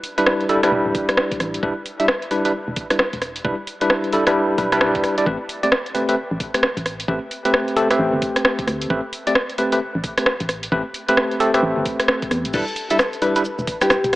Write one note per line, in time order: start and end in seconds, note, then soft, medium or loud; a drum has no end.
0.04 open hi-hat loud
0.18 0.47 G3 medium
0.18 0.47 D4 medium
0.18 0.47 E4 medium
0.18 0.47 B4 loud
0.18 closed hi-hat medium
0.26 cross-stick loud
0.41 closed hi-hat soft
0.49 0.60 G3 medium
0.49 0.60 D4 medium
0.49 0.60 E4 medium
0.49 0.60 A4 loud
0.49 open hi-hat loud
0.63 1.61 G3 medium
0.63 1.61 D4 medium
0.63 1.61 E4 medium
0.63 1.61 B4 medium
0.63 cross-stick medium
0.63 closed hi-hat medium
0.72 0.83 E1 medium
0.86 0.93 D1 loud
0.95 kick loud
0.95 open hi-hat loud
1.09 cross-stick medium
1.09 closed hi-hat medium
1.17 cross-stick loud
1.31 kick loud
1.31 closed hi-hat soft
1.40 1.59 A1 medium
1.40 cross-stick medium
1.40 open hi-hat loud
1.54 closed hi-hat medium
1.63 1.74 E1 loud
1.63 1.72 G3 medium
1.63 1.73 D4 medium
1.63 1.72 E4 medium
1.63 1.73 B4 medium
1.63 kick loud
1.86 open hi-hat loud
2.00 2.06 G3 medium
2.00 2.06 D4 medium
2.00 2.06 E4 medium
2.00 2.06 E5 medium
2.00 closed hi-hat medium
2.08 cross-stick loud
2.22 closed hi-hat soft
2.31 2.43 G3 medium
2.31 2.43 D4 medium
2.31 2.43 E4 medium
2.31 2.43 B4 medium
2.31 open hi-hat loud
2.45 2.51 G3 medium
2.45 2.51 D4 medium
2.45 2.51 E4 medium
2.45 2.51 B4 medium
2.45 closed hi-hat medium
2.68 2.75 E1 medium
2.76 kick loud
2.76 open hi-hat loud
2.90 3.01 G3 medium
2.90 3.01 D4 medium
2.90 3.01 E4 medium
2.90 3.01 B4 medium
2.90 cross-stick medium
2.90 closed hi-hat medium
2.99 cross-stick loud
3.13 3.42 E1 medium
3.13 kick medium
3.13 closed hi-hat soft
3.22 cross-stick soft
3.22 open hi-hat loud
3.36 closed hi-hat medium
3.45 3.56 E1 loud
3.45 3.54 G3 medium
3.45 3.54 D4 medium
3.45 3.54 E4 medium
3.45 3.54 B4 loud
3.45 kick loud
3.67 open hi-hat loud
3.81 4.11 G3 medium
3.81 4.11 D4 medium
3.81 4.11 E4 medium
3.81 4.11 B4 loud
3.81 closed hi-hat medium
3.90 cross-stick loud
4.04 closed hi-hat soft
4.13 4.24 G3 medium
4.13 4.24 D4 medium
4.13 4.24 E4 medium
4.13 4.24 A4 loud
4.13 open hi-hat loud
4.27 4.57 G3 medium
4.27 4.57 D4 medium
4.27 4.57 E4 medium
4.27 4.57 B4 loud
4.27 cross-stick medium
4.27 closed hi-hat medium
4.58 4.97 B1 medium
4.58 4.70 G3 medium
4.58 4.70 D4 medium
4.58 4.70 E4 medium
4.58 4.70 B4 medium
4.58 kick loud
4.58 open hi-hat loud
4.72 5.14 G3 medium
4.72 5.14 D4 medium
4.72 5.14 E4 medium
4.72 5.14 B4 loud
4.72 cross-stick medium
4.72 closed hi-hat medium
4.81 cross-stick loud
4.95 5.02 E1 medium
4.95 kick loud
4.95 closed hi-hat soft
5.04 cross-stick soft
5.04 open hi-hat medium
5.18 5.24 G3 medium
5.18 5.24 D4 medium
5.18 5.24 E4 medium
5.18 5.24 D5 medium
5.18 closed hi-hat medium
5.26 5.38 A1 loud
5.26 5.36 A3 medium
5.26 5.36 C4 medium
5.26 5.36 G4 medium
5.26 5.36 B4 medium
5.26 kick loud
5.49 open hi-hat loud
5.63 5.69 A3 medium
5.63 5.69 C4 medium
5.63 5.69 G4 medium
5.63 5.69 D5 medium
5.63 closed hi-hat medium
5.72 cross-stick loud
5.86 closed hi-hat soft
5.95 6.07 A3 medium
5.95 6.07 C4 medium
5.95 6.07 G4 medium
5.95 6.07 B4 medium
5.95 open hi-hat loud
6.09 6.15 A3 medium
6.09 6.15 C4 medium
6.09 6.15 G4 medium
6.09 6.15 B4 medium
6.09 closed hi-hat medium
6.31 6.38 A1 medium
6.40 kick loud
6.40 open hi-hat loud
6.54 6.64 A3 medium
6.54 6.64 C4 medium
6.54 6.64 G4 medium
6.54 6.64 B4 medium
6.54 cross-stick medium
6.54 closed hi-hat medium
6.63 cross-stick loud
6.77 7.05 A1 medium
6.77 kick medium
6.77 closed hi-hat medium
6.86 cross-stick soft
6.86 open hi-hat medium
7.00 closed hi-hat medium
7.08 7.19 A1 loud
7.08 7.18 A3 medium
7.08 7.18 C4 medium
7.08 7.18 G4 medium
7.08 7.18 B4 loud
7.08 kick loud
7.31 open hi-hat loud
7.45 7.74 A3 medium
7.45 7.74 C4 medium
7.45 7.74 G4 medium
7.45 7.74 B4 loud
7.45 closed hi-hat medium
7.54 cross-stick loud
7.68 closed hi-hat soft
7.76 7.87 A3 medium
7.76 7.87 C4 medium
7.76 7.87 G4 medium
7.76 7.87 A4 loud
7.76 open hi-hat loud
7.90 8.88 A3 medium
7.90 8.88 C4 medium
7.90 8.88 G4 medium
7.90 8.88 B4 loud
7.90 cross-stick medium
7.90 closed hi-hat medium
7.99 8.10 A1 medium
8.13 8.20 G1 loud
8.22 kick loud
8.22 open hi-hat loud
8.36 cross-stick medium
8.36 closed hi-hat medium
8.45 cross-stick loud
8.59 kick loud
8.59 closed hi-hat medium
8.67 8.86 D2 medium
8.67 cross-stick soft
8.67 open hi-hat loud
8.81 closed hi-hat medium
8.90 9.01 A1 loud
8.90 9.00 A3 medium
8.90 9.00 C4 medium
8.90 9.00 G4 medium
8.90 9.00 B4 loud
8.90 kick loud
9.13 open hi-hat loud
9.27 9.33 A3 medium
9.27 9.33 C4 medium
9.27 9.33 G4 medium
9.27 9.33 D5 medium
9.27 closed hi-hat medium
9.35 cross-stick loud
9.49 closed hi-hat soft
9.58 9.70 A3 medium
9.58 9.70 C4 medium
9.58 9.70 G4 medium
9.58 9.70 B4 medium
9.58 open hi-hat loud
9.72 9.78 A3 medium
9.72 9.78 C4 medium
9.72 9.78 G4 medium
9.72 9.78 B4 medium
9.72 closed hi-hat medium
9.95 10.02 A1 medium
10.04 kick loud
10.04 open hi-hat loud
10.18 10.28 A3 medium
10.18 10.28 C4 medium
10.18 10.28 G4 medium
10.18 10.28 B4 medium
10.18 cross-stick medium
10.18 closed hi-hat medium
10.26 cross-stick loud
10.40 10.69 A1 medium
10.40 kick medium
10.40 closed hi-hat medium
10.49 cross-stick medium
10.49 open hi-hat loud
10.63 closed hi-hat medium
10.72 10.83 A1 loud
10.72 10.82 A3 medium
10.72 10.82 C4 medium
10.72 10.82 G4 medium
10.72 10.82 B4 loud
10.72 kick loud
10.94 open hi-hat loud
11.08 11.38 A3 medium
11.08 11.38 C4 medium
11.08 11.38 G4 medium
11.08 11.38 B4 loud
11.08 closed hi-hat medium
11.17 cross-stick loud
11.31 closed hi-hat soft
11.40 11.51 A3 medium
11.40 11.51 C4 medium
11.40 11.51 G4 medium
11.40 11.51 A4 loud
11.40 open hi-hat loud
11.54 12.52 A3 medium
11.54 12.52 C4 medium
11.54 12.52 G4 medium
11.54 12.52 B4 loud
11.54 cross-stick medium
11.54 closed hi-hat medium
11.63 11.74 A1 loud
11.77 11.84 G1 loud
11.86 kick loud
11.86 open hi-hat loud
12.00 cross-stick medium
12.00 closed hi-hat medium
12.08 cross-stick loud
12.22 kick loud
12.22 closed hi-hat medium
12.31 12.46 E2 medium
12.31 cross-stick medium
12.31 open hi-hat loud
12.45 12.52 A1 medium
12.45 closed hi-hat medium
12.54 12.65 E1 loud
12.54 12.63 G3 medium
12.54 12.63 D4 medium
12.54 12.63 E4 medium
12.54 12.90 A4 loud
12.54 12.63 B4 loud
12.54 kick loud
12.54 crash loud
12.54 shaker soft
12.68 shaker soft
12.76 open hi-hat loud
12.90 12.97 G3 medium
12.90 12.97 D4 medium
12.90 12.97 E4 medium
12.90 14.16 A4 medium
12.90 12.97 E5 medium
12.90 closed hi-hat medium
12.90 shaker medium
12.99 cross-stick loud
12.99 shaker soft
13.13 closed hi-hat soft
13.13 shaker soft
13.22 13.34 G3 medium
13.22 13.34 D4 medium
13.22 13.34 E4 medium
13.22 13.34 B4 medium
13.22 14.16 B4 medium
13.22 open hi-hat loud
13.36 13.42 G3 medium
13.36 13.42 D4 medium
13.36 13.42 E4 medium
13.36 13.42 B4 medium
13.36 closed hi-hat medium
13.36 shaker medium
13.45 shaker medium
13.59 13.66 E1 medium
13.59 shaker soft
13.67 kick loud
13.67 open hi-hat loud
13.81 13.91 G3 medium
13.81 13.91 D4 medium
13.81 13.91 E4 medium
13.81 14.16 G4 medium
13.81 13.91 B4 medium
13.81 cross-stick medium
13.81 closed hi-hat medium
13.81 shaker medium
13.90 cross-stick loud
13.90 shaker soft
14.04 14.16 E1 medium
14.04 kick medium
14.04 closed hi-hat medium
14.04 shaker soft